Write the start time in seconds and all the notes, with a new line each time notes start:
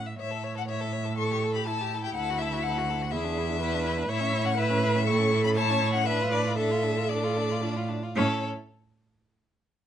Already playing: A2
0.06 E5
0.18 A2 C#5 E5
0.31 A4
0.44 C#5
0.55 A4 F#5
0.67 C#5 E5
0.81 A4
0.93 C#5
1.05 A4
1.18 A4 C#6
1.32 G4
1.44 A4
1.55 G4 B5
1.67 E4 A4 A5
1.81 G4
1.94 A4
2.03 G4 G5
2.15 D2 A4 F#5
2.30 F#4
2.39 A4 E5
2.53 F#4
2.63 A4 F#5
2.78 F#4
2.90 A4
3.02 F#4
3.11 E2 E4 G#4 E5
3.25 D4
3.38 E4
3.49 D4
3.61 E4 B4
3.74 D4
3.86 E4
3.98 D4
4.08 A2 E4 C#5 E5
4.20 C#4
4.33 E4
4.45 C#4 F#5
4.57 E4 B4 E5
4.70 C#4
4.83 E4
4.96 C#4
5.06 E4 A4 C#6
5.20 C#4
5.32 E4
5.44 C#4 B5
5.55 E4 C#5 A5
5.70 C#4
5.82 E4
5.93 C#4 F#5
6.06 D4 B4 E5
6.21 F4
6.31 D4 D5
6.46 F4
6.57 D4 A4 E5
6.71 F4
6.83 D4
6.97 F4
7.09 D4 D5
7.24 F4
7.37 D4
7.51 F4
7.62 D4 F4
7.76 F4
7.89 D4
8.03 F4
8.16 A2 C#4 A4 C#5